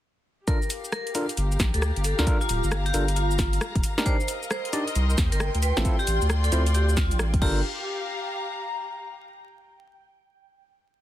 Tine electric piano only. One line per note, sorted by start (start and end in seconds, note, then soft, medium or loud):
0.48 0.57 D4 medium
0.48 0.57 F4 medium
0.48 0.57 A4 medium
0.48 0.57 A#4 medium
1.15 1.25 D4 medium
1.15 1.25 F4 medium
1.15 1.25 A4 medium
1.15 1.25 A#4 medium
2.19 2.25 D4 medium
2.19 2.25 F4 medium
2.19 2.25 A4 medium
2.19 2.25 A#4 loud
2.27 2.37 D4 medium
2.27 2.37 F4 medium
2.27 2.37 A4 medium
2.27 2.37 A#4 loud
2.94 3.04 D4 medium
2.94 3.04 F4 medium
2.94 3.04 A4 medium
2.94 3.04 A#4 medium
3.98 4.04 D4 medium
3.98 4.04 D#4 medium
3.98 4.04 G4 medium
3.98 4.04 A#4 loud
4.06 4.16 D4 medium
4.06 4.16 D#4 medium
4.06 4.16 G4 medium
4.06 4.16 A#4 medium
4.73 4.83 D4 medium
4.73 4.83 D#4 medium
4.73 4.83 G4 medium
4.73 4.83 D5 medium
5.77 5.83 C4 medium
5.77 5.83 E4 medium
5.77 5.83 F4 medium
5.77 5.83 A4 medium
5.85 5.95 C4 medium
5.85 5.95 E4 medium
5.85 5.95 F4 medium
5.85 5.95 A4 medium
6.52 6.62 C4 medium
6.52 6.62 E4 medium
6.52 6.62 F4 medium
6.52 6.62 C5 medium
7.42 7.60 D4 medium
7.42 7.60 F4 medium
7.42 7.60 A4 medium
7.42 7.60 A#4 loud